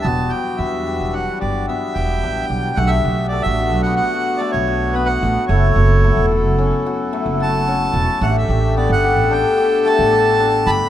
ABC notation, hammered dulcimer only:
X:1
M:5/4
L:1/8
Q:1/4=110
K:Bm
V:1 name="Hammered dulcimer"
B, G B, G D G B, G D G | A, F A, F B, F A, F B, F | A, F A, F C F A, F C F | A, G B, G D G A, G D G |]